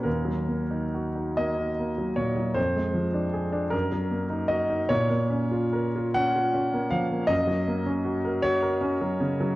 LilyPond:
<<
  \new Staff \with { instrumentName = "Grand piano" } { \time 6/8 \key dis \minor \tempo 4. = 51 ais'4. dis''4 cis''8 | bis'4. ais'4 dis''8 | \key bes \minor des''4. ges''4 f''8 | ees''4. des''4 r8 | }
  \new Staff \with { instrumentName = "Grand piano" } { \time 6/8 \key dis \minor dis,16 fis16 ais16 dis'16 fis'16 dis'16 ais16 dis'16 ais16 fis16 ais,16 fis16 | f,16 aes16 f16 d'16 aes'16 d'16 fis,16 fis16 ais16 dis'16 fis'16 dis'16 | \key bes \minor bes,16 bes16 des'16 f'16 bes'16 f'16 des'16 f'16 des'16 bes16 f16 bes16 | ges,16 ges16 bes16 des'16 ges'16 bes'16 ges'16 bes'16 des'16 ges16 des16 ges16 | }
>>